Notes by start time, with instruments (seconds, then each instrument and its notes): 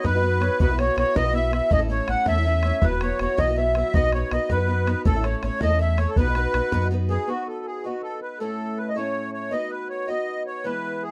0.04 sub bass F#2, steel-string acoustic guitar B3 D#4 F#4 B4, accordion B4, flute B4, bodhran
0.13 steel-string acoustic guitar D#4 F#4 B4
0.22 steel-string acoustic guitar B3 D#4 F#4 B4
0.40 steel-string acoustic guitar B3 D#4 F#4 B4, flute C#5, bodhran
0.60 sub bass B1, steel-string acoustic guitar B2 F#3 B3 E4 F#4 B4, flute B4, accordion B4, bodhran
0.70 steel-string acoustic guitar B3 E4 F#4
0.78 steel-string acoustic guitar B3 E4 F#4 B4, flute C#5, accordion C#5, bodhran
0.96 sub bass B1, steel-string acoustic guitar B3 E4 F#4 B4, flute C#5, accordion C#5, bodhran
1.15 sub bass B1, steel-string acoustic guitar B2 F#3 B3 E4 F#4 B4, flute D#5, accordion D#5, bodhran
1.23 steel-string acoustic guitar B3 E4 F#4 B4
1.33 steel-string acoustic guitar B3 E4 F#4 B4, accordion E5, flute E5
1.51 steel-string acoustic guitar B3 E4 F#4 B4, accordion E5, flute E5, bodhran
1.70 sub bass A1, steel-string acoustic guitar A2 A3 C#4 E4 A4, flute D#5, accordion D#5, bodhran
1.79 steel-string acoustic guitar C#4 E4 A4
1.89 steel-string acoustic guitar A3 C#4 E4 A4, flute C#5, accordion C#5
2.07 sub bass A1, steel-string acoustic guitar A3 C#4 E4 A4, flute F#5, accordion F#5, bodhran
2.26 sub bass E2, steel-string acoustic guitar A2 A3 C#4 E4 A4, flute E5, accordion E5, bodhran
2.35 steel-string acoustic guitar C#4 E4 A4
2.45 steel-string acoustic guitar A3 C#4 E4 A4
2.63 steel-string acoustic guitar A3 C#4 E4, flute C#5, bodhran
2.67 steel-string acoustic guitar A4
2.82 sub bass E1, steel-string acoustic guitar E3 F#3 B3 E4 F#4, flute B4, accordion B4, bodhran
2.91 steel-string acoustic guitar B3 E4 F#4
3.00 steel-string acoustic guitar F#3 B3 E4 F#4, accordion C#5, bodhran
3.19 sub bass E1, steel-string acoustic guitar F#3 B3 E4 F#4, flute C#5, accordion C#5, bodhran
3.37 sub bass B1, steel-string acoustic guitar E3 F#3 B3 E4 F#4, flute D#5, accordion D#5, bodhran
3.47 steel-string acoustic guitar B3 E4 F#4
3.56 steel-string acoustic guitar F#3 B3 E4 F#4, flute E5, accordion E5
3.75 steel-string acoustic guitar F#3 B3 E4 F#4, accordion E5, bodhran
3.94 sub bass B1, steel-string acoustic guitar B3 D#4 F#4 B4, flute D#5, accordion D#5, bodhran
4.05 steel-string acoustic guitar D#4 F#4
4.12 steel-string acoustic guitar B3 D#4 F#4, flute C#5, accordion C#5, bodhran
4.16 steel-string acoustic guitar B4
4.31 sub bass B1, steel-string acoustic guitar B3 D#4 F#4 B4, flute D#5, accordion D#5, bodhran
4.49 sub bass F#2, steel-string acoustic guitar B3 D#4 F#4 B4, flute B4, accordion B4, bodhran
4.57 steel-string acoustic guitar D#4 F#4 B4
4.67 steel-string acoustic guitar B3 D#4 F#4 B4
4.86 steel-string acoustic guitar B3 D#4 F#4 B4, bodhran
5.05 sub bass A1, steel-string acoustic guitar A2 A3 C#4 E4 A4, flute A4, accordion A4, bodhran
5.14 steel-string acoustic guitar C#4 E4 A4
5.23 steel-string acoustic guitar A3 C#4 E4 A4, accordion C#5, bodhran
5.42 sub bass A1, steel-string acoustic guitar A3 C#4 E4 A4, flute C#5, accordion C#5, bodhran
5.60 sub bass E2, steel-string acoustic guitar A2 A3 C#4 E4 A4, flute D#5, accordion D#5, bodhran
5.70 steel-string acoustic guitar C#4 E4 A4
5.79 steel-string acoustic guitar A3 C#4 E4 A4, flute E5, accordion E5
5.97 steel-string acoustic guitar A3 C#4 E4 A4, flute C#5, accordion C#5, bodhran
6.09 accordion A4
6.16 sub bass B1, steel-string acoustic guitar B3 D#4 F#4 B4, flute B4, accordion B4, bodhran
6.26 steel-string acoustic guitar D#4 F#4 B4
6.35 steel-string acoustic guitar B3 D#4 F#4, bodhran
6.39 steel-string acoustic guitar B4
6.54 sub bass B1, steel-string acoustic guitar B3 D#4 F#4 B4, bodhran
6.72 sub bass F#2, steel-string acoustic guitar B3 D#4 F#4 B4, bodhran
6.82 steel-string acoustic guitar D#4 F#4 B4
6.91 steel-string acoustic guitar B3 D#4 F#4 B4
7.09 steel-string acoustic guitar B3 D#4 F#4 B4, accordion G#4
7.28 steel-string acoustic guitar B3 D#4 F#4 B4, accordion F#4
7.47 accordion A4
7.66 accordion G#4
7.84 steel-string acoustic guitar B3 D#4 F#4 B4, accordion F#4
8.03 accordion A4
8.22 accordion B4
8.40 steel-string acoustic guitar A2 A3 C#4 E4 A4, accordion A4
8.77 accordion B4
8.89 accordion D#5
8.96 steel-string acoustic guitar A2 A3 C#4 E4 A4, accordion C#5
9.33 accordion C#5
9.51 steel-string acoustic guitar B3 D#4 F#4 B4, accordion D#5
9.70 accordion B4
9.89 accordion C#5
10.08 steel-string acoustic guitar B3 D#4 F#4 B4, accordion D#5
10.46 accordion C#5
10.64 steel-string acoustic guitar E3 G#3 B3 E4, accordion B4
11.03 accordion G#4